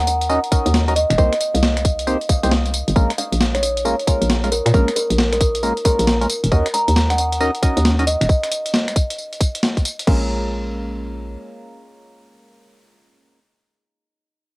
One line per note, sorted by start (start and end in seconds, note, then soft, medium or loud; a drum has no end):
0.00 0.39 D#2 medium
0.07 0.16 F#5 medium
0.07 closed hi-hat medium
0.07 tambourine medium
0.21 closed hi-hat medium
0.21 tambourine soft
0.29 0.40 C#4 loud
0.29 0.40 D#4 medium
0.29 0.40 F#4 medium
0.29 0.40 A#4 medium
0.29 0.40 D#5 loud
0.29 tambourine soft
0.44 closed hi-hat soft
0.44 tambourine soft
0.52 0.85 C#4 medium
0.52 0.85 D#4 medium
0.52 0.85 F#4 medium
0.52 0.85 A#4 medium
0.52 0.85 D#5 medium
0.52 kick loud
0.52 closed hi-hat loud
0.52 tambourine medium
0.66 1.05 D#2 loud
0.66 closed hi-hat medium
0.66 tambourine soft
0.74 snare loud
0.74 tambourine soft
0.88 0.94 C#4 medium
0.88 0.94 D#4 medium
0.88 0.94 F#4 medium
0.88 0.94 A#4 medium
0.88 0.94 D#5 medium
0.88 closed hi-hat soft
0.88 tambourine soft
0.96 1.11 D#5 medium
0.96 closed hi-hat medium
0.96 tambourine medium
1.10 1.17 D#1 loud
1.10 finger snap medium
1.10 closed hi-hat medium
1.10 tambourine soft
1.18 1.29 C2 loud
1.18 1.34 A#3 loud
1.18 1.34 C4 medium
1.18 1.34 D#4 medium
1.18 1.34 G4 medium
1.18 1.34 C5 loud
1.18 1.33 D#5 medium
1.18 kick loud
1.18 tambourine soft
1.33 finger snap medium
1.33 closed hi-hat medium
1.33 tambourine soft
1.41 closed hi-hat loud
1.41 tambourine medium
1.54 2.16 C2 medium
1.54 1.63 F5 medium
1.54 closed hi-hat medium
1.54 tambourine soft
1.63 snare loud
1.63 tambourine soft
1.77 finger snap medium
1.77 closed hi-hat medium
1.77 tambourine soft
1.85 kick loud
1.85 closed hi-hat medium
1.85 tambourine medium
1.99 closed hi-hat medium
1.99 tambourine soft
2.07 2.18 A#3 loud
2.07 2.18 C4 medium
2.07 2.18 D#4 medium
2.07 2.18 G4 medium
2.07 2.18 C5 loud
2.07 tambourine soft
2.21 closed hi-hat soft
2.21 tambourine soft
2.29 2.38 F5 medium
2.29 kick loud
2.29 closed hi-hat loud
2.29 tambourine medium
2.43 2.83 C2 loud
2.43 2.54 A#3 medium
2.43 2.54 C4 medium
2.43 2.54 D#4 medium
2.43 2.54 G4 medium
2.43 2.54 C5 loud
2.43 2.49 F5 medium
2.43 closed hi-hat medium
2.43 tambourine soft
2.52 snare loud
2.52 tambourine soft
2.66 closed hi-hat soft
2.66 tambourine soft
2.74 closed hi-hat medium
2.74 tambourine medium
2.88 2.94 G1 loud
2.88 closed hi-hat medium
2.88 tambourine soft
2.96 3.07 A#1 loud
2.96 3.12 G#3 loud
2.96 3.12 A#3 medium
2.96 3.12 C#4 medium
2.96 3.12 F4 medium
2.96 3.12 A#4 loud
2.96 kick loud
2.96 tambourine soft
3.10 finger snap medium
3.10 closed hi-hat medium
3.10 tambourine soft
3.18 3.33 F5 medium
3.18 closed hi-hat loud
3.18 tambourine medium
3.32 3.94 A#1 medium
3.32 closed hi-hat medium
3.32 tambourine soft
3.41 snare loud
3.41 tambourine soft
3.54 3.60 C#5 medium
3.54 finger snap medium
3.54 closed hi-hat medium
3.54 tambourine soft
3.62 3.72 C#5 medium
3.62 closed hi-hat medium
3.62 tambourine medium
3.77 closed hi-hat medium
3.77 tambourine soft
3.85 3.95 G#3 loud
3.85 3.95 A#3 medium
3.85 3.95 C#4 medium
3.85 3.95 F4 medium
3.85 3.95 A#4 loud
3.85 tambourine soft
3.99 closed hi-hat soft
3.99 tambourine soft
4.07 4.40 G#3 medium
4.07 4.40 A#3 medium
4.07 4.40 C#4 medium
4.07 4.40 F4 medium
4.07 4.40 A#4 medium
4.07 kick loud
4.07 closed hi-hat loud
4.07 tambourine medium
4.21 4.61 A#1 loud
4.21 closed hi-hat medium
4.21 tambourine soft
4.29 snare loud
4.29 tambourine soft
4.44 4.50 G#3 medium
4.44 4.50 A#3 medium
4.44 4.50 C#4 medium
4.44 4.50 F4 medium
4.44 4.50 A#4 medium
4.44 closed hi-hat soft
4.44 tambourine soft
4.51 4.66 A#4 medium
4.51 closed hi-hat medium
4.51 tambourine medium
4.66 4.72 A#2 loud
4.66 finger snap medium
4.66 closed hi-hat medium
4.66 tambourine soft
4.74 4.85 A#1 loud
4.74 4.89 G#3 loud
4.74 4.89 A#3 medium
4.74 4.89 C#4 medium
4.74 4.89 F4 medium
4.74 4.88 A#4 medium
4.74 4.89 A#4 loud
4.74 kick loud
4.74 tambourine soft
4.88 finger snap medium
4.88 closed hi-hat medium
4.88 tambourine soft
4.96 5.11 A#4 medium
4.96 closed hi-hat loud
4.96 tambourine medium
5.10 5.72 A#1 medium
5.10 closed hi-hat medium
5.10 tambourine soft
5.18 snare loud
5.18 tambourine soft
5.32 5.38 A#4 medium
5.32 finger snap medium
5.32 closed hi-hat medium
5.32 tambourine soft
5.40 5.49 A#4 medium
5.40 kick loud
5.40 closed hi-hat medium
5.40 tambourine medium
5.55 closed hi-hat medium
5.55 tambourine soft
5.63 5.73 G#3 loud
5.63 5.73 A#3 medium
5.63 5.73 C#4 medium
5.63 5.73 F4 medium
5.63 5.73 A#4 loud
5.63 tambourine soft
5.77 closed hi-hat soft
5.77 tambourine soft
5.85 6.18 G#3 medium
5.85 6.18 A#3 medium
5.85 6.18 C#4 medium
5.85 6.18 F4 medium
5.85 5.94 A#4 medium
5.85 6.18 A#4 medium
5.85 kick loud
5.85 closed hi-hat loud
5.85 tambourine medium
5.99 6.27 A#1 loud
5.99 6.04 A#4 medium
5.99 closed hi-hat medium
5.99 tambourine soft
6.07 snare loud
6.07 tambourine soft
6.21 6.27 G#3 medium
6.21 6.27 A#3 medium
6.21 6.27 C#4 medium
6.21 6.27 F4 medium
6.21 6.27 A#4 medium
6.21 closed hi-hat soft
6.21 tambourine soft
6.30 closed hi-hat loud
6.30 tambourine medium
6.44 6.50 D#1 loud
6.44 closed hi-hat medium
6.44 tambourine soft
6.52 6.63 D#2 loud
6.52 6.67 C#4 medium
6.52 6.67 D#4 medium
6.52 6.67 F#4 medium
6.52 6.67 A#4 medium
6.52 6.67 D#5 loud
6.52 kick loud
6.52 tambourine soft
6.66 finger snap medium
6.66 closed hi-hat medium
6.66 tambourine soft
6.74 6.88 A#5 medium
6.74 closed hi-hat loud
6.74 tambourine medium
6.88 7.50 D#2 medium
6.88 closed hi-hat medium
6.88 tambourine soft
6.96 snare loud
6.96 tambourine soft
7.10 7.15 F#5 medium
7.10 finger snap medium
7.10 closed hi-hat medium
7.10 tambourine soft
7.18 7.27 F#5 medium
7.18 closed hi-hat loud
7.18 tambourine medium
7.33 closed hi-hat medium
7.33 tambourine soft
7.41 7.51 C#4 loud
7.41 7.51 D#4 medium
7.41 7.51 F#4 medium
7.41 7.51 A#4 medium
7.41 7.51 D#5 loud
7.41 tambourine soft
7.55 closed hi-hat soft
7.55 tambourine soft
7.63 7.96 C#4 medium
7.63 7.96 D#4 medium
7.63 7.96 F#4 medium
7.63 7.96 A#4 medium
7.63 7.96 D#5 medium
7.63 kick loud
7.63 closed hi-hat loud
7.63 tambourine medium
7.77 8.16 D#2 loud
7.77 closed hi-hat medium
7.77 tambourine soft
7.85 snare loud
7.85 tambourine soft
7.99 8.05 C#4 medium
7.99 8.05 D#4 medium
7.99 8.05 F#4 medium
7.99 8.05 A#4 medium
7.99 8.05 D#5 medium
7.99 closed hi-hat soft
7.99 tambourine soft
8.07 8.22 D#5 medium
8.07 closed hi-hat loud
8.07 tambourine medium
8.21 8.28 D#1 loud
8.21 finger snap medium
8.21 closed hi-hat medium
8.21 tambourine soft
8.29 kick loud
8.29 tambourine soft
8.44 finger snap medium
8.44 closed hi-hat medium
8.44 tambourine soft
8.52 closed hi-hat loud
8.52 tambourine medium
8.66 closed hi-hat medium
8.66 tambourine soft
8.74 snare loud
8.74 tambourine soft
8.88 finger snap medium
8.88 closed hi-hat medium
8.88 tambourine soft
8.96 kick loud
8.96 closed hi-hat loud
8.96 tambourine medium
9.10 closed hi-hat medium
9.10 tambourine soft
9.19 tambourine soft
9.33 closed hi-hat soft
9.33 tambourine soft
9.41 kick loud
9.41 closed hi-hat loud
9.41 tambourine medium
9.55 closed hi-hat medium
9.55 tambourine soft
9.63 snare loud
9.63 tambourine soft
9.77 kick medium
9.77 closed hi-hat soft
9.77 tambourine soft
9.85 closed hi-hat loud
9.85 tambourine medium
9.99 closed hi-hat medium
9.99 tambourine soft
10.07 11.37 A#1 loud
10.07 13.40 G#3 medium
10.07 13.40 A#3 medium
10.07 13.40 C#4 medium
10.07 13.40 F4 medium
10.07 13.40 A#4 loud
10.07 kick loud
10.07 crash medium